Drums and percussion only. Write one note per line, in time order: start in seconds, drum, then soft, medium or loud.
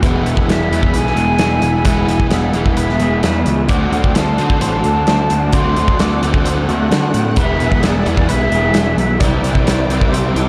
0.03 kick loud
0.03 closed hi-hat medium
0.26 closed hi-hat medium
0.37 kick medium
0.49 snare loud
0.49 closed hi-hat medium
0.73 closed hi-hat medium
0.83 kick medium
0.94 closed hi-hat medium
1.07 snare soft
1.17 closed hi-hat medium
1.39 snare loud
1.39 closed hi-hat medium
1.62 closed hi-hat medium
1.85 kick loud
1.85 closed hi-hat loud
2.09 closed hi-hat medium
2.20 kick medium
2.31 snare loud
2.31 closed hi-hat medium
2.53 closed hi-hat medium
2.66 kick medium
2.77 closed hi-hat loud
2.89 snare soft
3.00 closed hi-hat medium
3.23 snare loud
3.23 closed hi-hat medium
3.46 closed hi-hat medium
3.69 kick loud
3.69 closed hi-hat medium
3.93 closed hi-hat medium
4.04 kick medium
4.15 snare loud
4.15 closed hi-hat medium
4.38 closed hi-hat medium
4.50 kick medium
4.61 closed hi-hat loud
4.84 closed hi-hat medium
5.07 snare medium
5.07 closed hi-hat medium
5.30 closed hi-hat medium
5.53 kick loud
5.53 closed hi-hat medium
5.76 closed hi-hat medium
5.88 kick medium
5.99 snare loud
5.99 closed hi-hat medium
6.23 closed hi-hat medium
6.34 kick medium
6.46 closed hi-hat medium
6.69 closed hi-hat medium
6.92 snare loud
6.92 closed hi-hat medium
7.14 closed hi-hat medium
7.36 kick loud
7.36 closed hi-hat medium
7.60 closed hi-hat medium
7.72 kick medium
7.83 snare loud
7.83 closed hi-hat medium
8.06 closed hi-hat medium
8.17 kick medium
8.29 closed hi-hat medium
8.52 closed hi-hat medium
8.74 snare medium
8.74 closed hi-hat medium
8.98 closed hi-hat medium
9.20 kick loud
9.20 closed hi-hat medium
9.44 closed hi-hat medium
9.55 kick medium
9.67 snare loud
9.67 closed hi-hat loud
9.90 closed hi-hat medium
10.01 kick medium
10.14 closed hi-hat medium
10.36 closed hi-hat medium